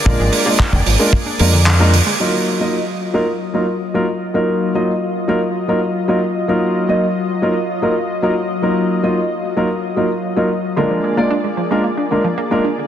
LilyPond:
<<
  \new Staff \with { instrumentName = "Analog synth pad" } { \time 4/4 \key ees \minor \tempo 4 = 112 <bes aes' d''>1 | <ges f' ees''>1~ | <ges f' ees''>1~ | <ges f' ees''>1~ |
<ges f' ees''>1 | <bes aes' d''>1 | }
  \new Staff \with { instrumentName = "Grand piano" } { \time 4/4 \key ees \minor <aes bes d' f' bes'>8. <aes bes d' f' d''>16 r8. <aes bes d' f' bes'>16 r8 <aes bes d' f' bes'>16 r8 <aes bes d' f' bes'>16 r8 | <ges bes ees' f' bes'>8. <ges bes ees' f' ees''>16 r8. <ges bes ees' f' bes'>16 r8 <ges bes ees' f' bes'>16 r8 <ges bes ees' f' bes'>16 r8 | <ges bes ees' f' bes'>8. <ges bes ees' f' ees''>16 r8. <ges bes ees' f' bes'>16 r8 <ges bes ees' f' bes'>16 r8 <ges bes ees' f' bes'>16 r8 | <ges bes ees' f' bes'>8. <ges bes ees' f' ees''>16 r8. <ges bes ees' f' bes'>16 r8 <ges bes ees' f' bes'>16 r8 <ges bes ees' f' bes'>16 r8 |
<ges bes ees' f' bes'>8. <ges bes ees' f' ees''>16 r8. <ges bes ees' f' bes'>16 r8 <ges bes ees' f' bes'>16 r8 <ges bes ees' f' bes'>16 r8 | <aes bes d' f' bes'>8. <aes bes d' f' d''>16 r8. <aes bes d' f' bes'>16 r8 <aes bes d' f' bes'>16 r8 <aes bes d' f' bes'>16 r8 | }
  \new Staff \with { instrumentName = "Synth arpeggio sound" } { \clef bass \time 4/4 \key ees \minor d16 f16 aes16 bes16 d'16 d16 f16 aes16 bes16 d'16 bes16 d16 d16 f'16 d16 aes16 | r1 | r1 | r1 |
r1 | d16 f16 aes16 bes16 d'16 aes16 f16 aes16 bes16 d'16 d16 f16 bes16 bes16 d'16 d16 | }
  \new Staff \with { instrumentName = "Fingered electric bass" } { \clef bass \time 4/4 \key ees \minor bes,,16 aes,,16 r8. f,,16 aes,,16 r8. f,4 r8 | r1 | r1 | r1 |
r1 | r1 | }
  \new DrumStaff \with { instrumentName = "Drums" } \drummode { \time 4/4 bd8 hho8 <hc bd>16 bd16 hho8 bd8 hho8 hc8 hho8 | r4 r4 r4 r4 | r4 r4 r4 r4 | r4 r4 r4 r4 |
r4 r4 r4 r4 | r4 r4 r4 r4 | }
>>